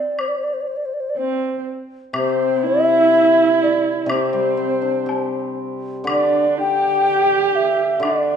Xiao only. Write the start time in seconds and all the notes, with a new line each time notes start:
Already playing: D5
0.20 C5
0.28 D5
0.38 C5
0.44 D5
0.53 C5
0.61 D5
0.67 C5
0.76 D5
0.85 C5
0.94 D5
1.00 C5
1.10 D5
1.17 C5
2.17 C5
2.67 E5
3.63 D5
4.04 D5
4.09 C5
6.12 D5
6.59 G5
7.48 G5
7.56 E5
8.05 D5